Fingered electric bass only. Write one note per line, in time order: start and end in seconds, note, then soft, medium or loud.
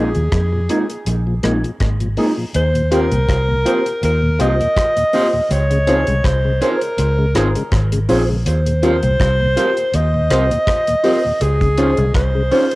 0.00 0.12 A#1 medium
0.16 0.32 D#2 medium
0.32 0.67 F2 medium
1.07 1.42 A#1 loud
1.43 1.62 A#1 medium
1.81 2.16 G#1 loud
2.55 3.09 D#2 loud
3.12 3.28 C2 loud
3.29 3.64 C2 loud
4.03 4.38 D#2 loud
4.40 4.59 C2 medium
5.51 6.04 C#2 loud
6.08 6.24 C2 medium
6.24 6.59 C2 medium
6.99 7.33 C#2 loud
7.36 7.54 G#1 medium
7.72 8.07 G#1 loud
8.10 8.44 A#1 medium
8.46 9.00 D#2 loud
9.03 9.19 C2 loud
9.20 9.55 C2 loud
9.94 10.29 D#2 loud
10.30 10.49 C2 medium
11.41 11.95 C#2 loud
11.98 12.14 C2 loud
12.15 12.50 C2 medium